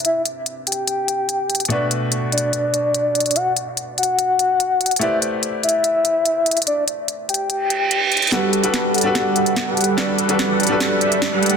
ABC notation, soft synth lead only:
X:1
M:4/4
L:1/8
Q:1/4=145
K:G
V:1 name="Soft synth lead"
e z2 g4- g | d z2 d4- d | f z2 f4- f | e z2 e4- e |
d z2 g4- g | f z2 f4- f | d z2 d4- d |]